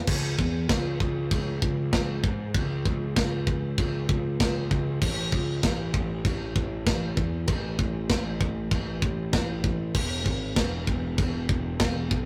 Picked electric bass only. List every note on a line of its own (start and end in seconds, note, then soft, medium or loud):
0.08 0.36 C#2 medium
0.38 0.67 E2 medium
0.69 0.98 C#2 medium
1.00 1.29 C#2 loud
1.31 1.60 C#2 loud
1.62 1.91 C#2 medium
1.93 2.22 C#2 medium
2.23 2.52 G#2 medium
2.55 2.83 C#2 medium
2.86 3.14 C#2 medium
3.16 3.74 C#2 medium
3.78 4.07 C#2 medium
4.09 4.38 C#2 loud
4.40 4.69 C#2 loud
4.71 4.99 C#2 medium
5.02 5.30 A1 loud
5.32 5.61 C#2 loud
5.63 5.92 A1 medium
5.94 6.23 A1 medium
6.25 6.53 A1 loud
6.56 6.84 A1 medium
6.87 7.15 A1 loud
7.17 7.46 E2 medium
7.48 7.77 A1 loud
7.79 8.08 A1 loud
8.09 8.67 A1 medium
8.71 9.00 A1 loud
9.02 9.31 A1 medium
9.33 9.62 A1 loud
9.64 9.93 A1 medium
9.94 10.23 E1 medium
10.25 10.54 G#1 medium
10.56 10.85 E1 medium
10.87 11.16 E1 medium
11.18 11.47 E1 loud
11.49 11.78 E1 loud
11.80 12.09 E1 medium
12.11 12.26 B1 medium